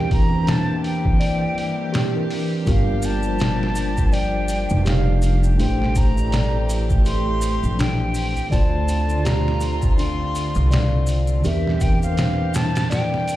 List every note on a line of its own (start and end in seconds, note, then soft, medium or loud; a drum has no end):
0.00 1.57 E2 loud
0.00 0.26 E3 medium
0.00 2.63 E3 medium
0.00 5.55 A#3 medium
0.00 0.26 C4 medium
0.00 2.63 C4 medium
0.00 0.27 D4 medium
0.00 1.93 G4 medium
0.00 5.55 G4 medium
0.00 0.27 A#4 medium
0.11 0.50 A#5 loud
0.11 kick loud
0.11 open hi-hat medium
0.29 2.09 E3 medium
0.29 2.10 C4 medium
0.33 2.11 D4 medium
0.33 2.12 C5 medium
0.47 0.82 D4 medium
0.47 0.84 A5 loud
0.47 snare loud
0.47 open hi-hat medium
0.84 2.27 G5 loud
0.84 open hi-hat medium
1.05 kick loud
1.20 1.43 D5 medium
1.20 open hi-hat loud
1.57 1.89 G2 medium
1.57 open hi-hat medium
1.93 2.28 G4 medium
1.93 snare loud
1.93 open hi-hat medium
2.13 2.62 E3 medium
2.13 2.62 C4 medium
2.13 2.63 D4 medium
2.13 2.63 A#4 medium
2.30 open hi-hat medium
2.65 4.67 G1 medium
2.65 5.56 F3 medium
2.65 3.18 G3 medium
2.65 3.19 D4 medium
2.65 5.56 D4 medium
2.65 3.19 F4 medium
2.65 3.01 G4 medium
2.65 3.20 A#4 loud
2.65 kick loud
2.65 open hi-hat medium
2.65 maracas soft
2.69 3.07 F5 medium
3.02 4.15 A5 loud
3.02 open hi-hat medium
3.02 maracas medium
3.22 5.54 G3 medium
3.22 5.55 D4 medium
3.22 maracas soft
3.26 5.56 F4 medium
3.26 5.57 C5 medium
3.39 3.74 D4 medium
3.39 snare loud
3.39 open hi-hat medium
3.39 maracas soft
3.63 snare medium
3.75 open hi-hat medium
3.75 maracas medium
3.97 kick medium
3.97 maracas medium
4.12 4.36 D5 medium
4.12 4.86 G5 medium
4.12 open hi-hat medium
4.12 maracas soft
4.48 open hi-hat medium
4.48 maracas medium
4.70 5.56 F1 loud
4.70 maracas medium
4.85 5.21 G4 medium
4.85 5.40 F5 loud
4.85 snare loud
4.85 open hi-hat medium
4.85 maracas soft
5.22 open hi-hat medium
5.22 maracas medium
5.44 maracas medium
5.58 7.59 A1 medium
5.58 8.49 E3 medium
5.58 6.11 A3 medium
5.58 8.49 A3 medium
5.58 13.36 C4 medium
5.58 5.93 D4 medium
5.58 6.12 E4 medium
5.58 6.12 G4 medium
5.58 8.49 G4 medium
5.58 6.13 C5 loud
5.58 5.99 G5 medium
5.58 open hi-hat medium
5.58 maracas soft
5.82 snare soft
5.95 6.81 A#5 loud
5.95 kick medium
5.95 open hi-hat medium
5.95 maracas medium
6.14 8.47 A3 medium
6.14 8.47 E4 medium
6.14 maracas medium
6.18 8.49 G4 medium
6.18 8.50 D5 medium
6.32 6.55 D5 medium
6.32 snare loud
6.32 open hi-hat medium
6.32 maracas soft
6.69 open hi-hat medium
6.69 maracas loud
6.90 kick loud
6.90 maracas medium
7.05 7.40 G4 medium
7.05 7.81 C6 loud
7.05 open hi-hat medium
7.05 maracas soft
7.41 open hi-hat medium
7.41 maracas medium
7.63 8.32 A#1 loud
7.63 maracas soft
7.78 8.13 D4 medium
7.78 8.54 G5 loud
7.78 snare loud
7.78 open hi-hat medium
7.78 maracas soft
8.14 open hi-hat medium
8.14 maracas medium
8.37 maracas soft
8.50 10.52 D2 medium
8.50 9.03 D3 medium
8.50 11.41 D3 medium
8.50 11.42 A3 medium
8.50 9.04 D4 medium
8.50 9.04 F4 medium
8.50 11.42 F4 loud
8.50 9.05 C5 medium
8.50 8.75 D5 medium
8.50 9.27 A5 loud
8.50 kick loud
8.50 open hi-hat medium
8.50 maracas soft
8.88 open hi-hat medium
8.88 maracas medium
9.07 11.39 D3 medium
9.07 11.40 D4 medium
9.07 11.41 F4 medium
9.07 maracas soft
9.13 11.42 D5 medium
9.24 9.59 G4 medium
9.24 9.97 A#5 loud
9.24 snare loud
9.24 open hi-hat medium
9.24 maracas soft
9.48 snare soft
9.61 open hi-hat medium
9.61 maracas medium
9.82 kick medium
9.82 maracas soft
9.98 10.33 D4 medium
9.98 11.04 C6 loud
9.98 open hi-hat loud
9.98 maracas soft
10.35 open hi-hat medium
10.35 maracas medium
10.55 11.41 C2 loud
10.55 maracas soft
10.71 10.94 D5 medium
10.71 snare loud
10.71 open hi-hat medium
10.71 maracas soft
11.07 open hi-hat medium
11.07 maracas medium
11.27 maracas soft
11.42 13.36 E2 loud
11.42 11.96 E3 medium
11.42 13.36 E3 medium
11.42 13.36 A#3 medium
11.42 11.97 C4 medium
11.42 11.97 D4 medium
11.42 11.79 G4 medium
11.42 13.36 G4 medium
11.42 11.98 A#4 medium
11.42 11.83 E5 medium
11.42 open hi-hat medium
11.42 maracas soft
11.67 snare soft
11.81 12.02 G5 medium
11.81 kick medium
11.81 open hi-hat medium
11.81 maracas medium
11.99 13.36 E3 medium
11.99 13.36 C4 medium
11.99 12.57 F5 loud
11.99 maracas medium
12.03 13.36 D4 medium
12.03 13.36 C5 medium
12.17 12.52 D4 medium
12.17 snare loud
12.17 open hi-hat medium
12.17 maracas soft
12.54 12.91 A5 loud
12.54 snare loud
12.54 open hi-hat medium
12.54 maracas medium
12.76 snare loud
12.76 open hi-hat medium
12.76 maracas soft
12.90 13.14 D5 medium
12.90 13.36 G5 loud
12.90 snare loud
12.90 open hi-hat medium
12.90 maracas soft
13.14 snare soft
13.28 open hi-hat medium
13.28 maracas medium